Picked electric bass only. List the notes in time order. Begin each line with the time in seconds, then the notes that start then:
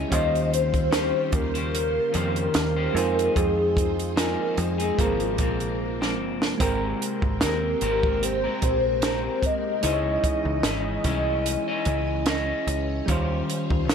0.12 D#2
1.33 D#2
2.15 F2
2.55 D#2
2.95 F2
3.36 F2
4.58 F2
4.99 G#1
5.39 A#1
6.20 G1
6.60 G#1
7.22 G#1
7.41 D#2
7.82 G#1
8.63 A#1
9.84 C#2
10.45 C#2
10.64 G#1
11.05 C2
11.86 C#2
12.67 C#2
13.08 D#2
13.71 D#2
13.89 A#1